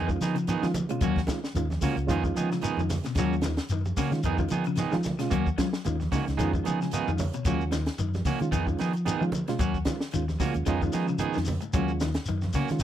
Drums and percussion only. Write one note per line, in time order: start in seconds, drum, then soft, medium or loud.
0.09 kick medium
0.09 shekere soft
0.21 snare soft
0.21 closed hi-hat soft
0.21 low conga medium
0.21 shekere medium
0.36 closed hi-hat medium
0.36 shekere soft
0.47 closed hi-hat medium
0.47 high conga medium
0.47 shekere medium
0.62 snare soft
0.62 shekere soft
0.74 closed hi-hat soft
0.74 high conga medium
0.74 low conga medium
0.74 shekere medium
0.89 closed hi-hat medium
0.89 shekere soft
1.01 kick medium
1.01 closed hi-hat medium
1.01 high conga soft
1.01 low conga medium
1.01 shekere medium
1.16 kick medium
1.16 snare soft
1.16 shekere soft
1.27 kick medium
1.27 snare medium
1.27 closed hi-hat medium
1.27 high conga medium
1.27 shekere medium
1.44 snare medium
1.44 shekere soft
1.55 closed hi-hat medium
1.55 high conga soft
1.55 shekere medium
1.70 snare soft
1.70 high conga medium
1.70 shekere soft
1.82 kick medium
1.82 open hi-hat medium
1.82 low conga medium
1.82 shekere medium
1.97 closed hi-hat soft
1.97 shekere soft
2.08 kick medium
2.08 closed hi-hat medium
2.08 high conga soft
2.08 shekere medium
2.24 kick medium
2.24 shekere soft
2.36 closed hi-hat medium
2.36 low conga medium
2.36 shekere medium
2.51 snare soft
2.51 shekere soft
2.62 closed hi-hat medium
2.62 high conga medium
2.62 shekere medium
2.77 high conga medium
2.77 shekere soft
2.89 snare soft
2.89 open hi-hat medium
2.89 high conga medium
2.89 low conga medium
2.89 shekere medium
3.04 snare soft
3.04 closed hi-hat soft
3.04 shekere soft
3.15 kick medium
3.15 snare soft
3.15 closed hi-hat medium
3.15 high conga soft
3.15 low conga medium
3.15 shekere medium
3.33 shekere soft
3.41 snare medium
3.41 closed hi-hat soft
3.41 high conga medium
3.41 shekere medium
3.57 snare medium
3.57 closed hi-hat soft
3.57 shekere soft
3.68 closed hi-hat medium
3.68 high conga soft
3.68 shekere medium
3.85 high conga medium
3.85 shekere soft
3.97 kick medium
3.97 open hi-hat medium
3.97 high conga medium
3.97 low conga medium
3.97 shekere medium
4.12 snare soft
4.12 closed hi-hat soft
4.12 shekere soft
4.23 kick medium
4.23 closed hi-hat medium
4.23 shekere medium
4.38 kick medium
4.38 shekere soft
4.48 closed hi-hat soft
4.48 low conga medium
4.48 shekere medium
4.64 closed hi-hat soft
4.64 shekere soft
4.75 snare soft
4.75 closed hi-hat medium
4.75 high conga medium
4.75 shekere medium
4.92 snare soft
4.92 high conga medium
4.92 shekere soft
5.03 snare soft
5.03 closed hi-hat soft
5.03 high conga medium
5.03 low conga medium
5.03 shekere medium
5.19 snare soft
5.19 closed hi-hat medium
5.19 shekere soft
5.31 kick medium
5.31 closed hi-hat medium
5.31 high conga soft
5.31 low conga medium
5.31 shekere medium
5.46 kick medium
5.46 shekere soft
5.58 kick medium
5.58 snare medium
5.58 closed hi-hat soft
5.58 high conga medium
5.58 shekere medium
5.73 snare medium
5.73 shekere soft
5.84 closed hi-hat medium
5.84 high conga soft
5.84 shekere medium
6.00 snare soft
6.00 high conga medium
6.00 shekere soft
6.12 kick medium
6.12 open hi-hat medium
6.12 high conga medium
6.12 low conga medium
6.12 shekere medium
6.28 snare soft
6.28 closed hi-hat medium
6.28 shekere soft
6.39 kick medium
6.39 closed hi-hat medium
6.39 high conga soft
6.39 shekere medium
6.53 kick medium
6.53 shekere soft
6.65 closed hi-hat soft
6.65 low conga medium
6.65 shekere medium
6.81 snare soft
6.81 shekere soft
6.91 closed hi-hat medium
6.91 high conga medium
6.91 shekere medium
7.08 high conga medium
7.08 shekere soft
7.18 open hi-hat medium
7.18 high conga medium
7.18 low conga medium
7.18 shekere medium
7.33 closed hi-hat soft
7.33 shekere soft
7.45 kick medium
7.45 closed hi-hat medium
7.45 high conga soft
7.45 low conga medium
7.45 shekere medium
7.61 shekere soft
7.71 snare medium
7.71 closed hi-hat soft
7.71 high conga medium
7.71 shekere medium
7.86 snare medium
7.86 closed hi-hat medium
7.86 shekere soft
7.98 closed hi-hat medium
7.98 high conga soft
7.98 shekere medium
8.14 snare soft
8.14 high conga medium
8.14 shekere soft
8.25 kick medium
8.25 open hi-hat medium
8.25 high conga medium
8.25 low conga medium
8.25 shekere medium
8.40 closed hi-hat soft
8.40 shekere soft
8.52 kick medium
8.52 closed hi-hat medium
8.52 shekere medium
8.67 kick medium
8.67 shekere soft
8.78 snare soft
8.78 closed hi-hat soft
8.78 shekere medium
8.93 closed hi-hat soft
8.93 shekere soft
9.06 closed hi-hat medium
9.06 high conga medium
9.06 shekere medium
9.22 shekere soft
9.32 closed hi-hat soft
9.32 high conga medium
9.32 low conga medium
9.32 shekere medium
9.48 snare soft
9.48 closed hi-hat soft
9.48 shekere soft
9.59 kick medium
9.59 closed hi-hat medium
9.59 shekere medium
9.74 kick medium
9.74 shekere soft
9.85 kick medium
9.85 snare medium
9.85 closed hi-hat soft
9.85 high conga medium
9.85 shekere medium
10.00 snare medium
10.00 shekere soft
10.11 closed hi-hat medium
10.11 high conga soft
10.11 shekere medium
10.28 snare soft
10.28 high conga medium
10.28 shekere soft
10.40 kick medium
10.40 open hi-hat medium
10.40 high conga medium
10.40 low conga medium
10.40 shekere medium
10.54 closed hi-hat soft
10.54 shekere soft
10.66 kick medium
10.66 closed hi-hat medium
10.66 shekere medium
10.81 kick medium
10.81 shekere soft
10.93 snare soft
10.93 closed hi-hat soft
10.93 shekere medium
11.08 shekere soft
11.18 closed hi-hat medium
11.18 high conga medium
11.18 shekere medium
11.33 snare soft
11.33 shekere soft
11.45 open hi-hat medium
11.45 high conga medium
11.45 low conga medium
11.45 shekere medium
11.61 closed hi-hat medium
11.61 shekere soft
11.73 kick medium
11.73 closed hi-hat medium
11.73 high conga soft
11.73 low conga medium
11.73 shekere medium
11.88 shekere soft
12.00 snare medium
12.00 closed hi-hat soft
12.00 high conga medium
12.00 shekere medium
12.14 snare medium
12.14 closed hi-hat soft
12.14 shekere soft
12.26 closed hi-hat medium
12.26 shekere medium
12.30 high conga soft
12.42 snare soft
12.42 high conga medium
12.42 shekere soft
12.53 kick medium
12.53 open hi-hat medium
12.53 high conga medium
12.53 low conga medium
12.53 shekere medium
12.68 snare soft
12.68 closed hi-hat soft
12.68 shekere soft
12.79 shekere medium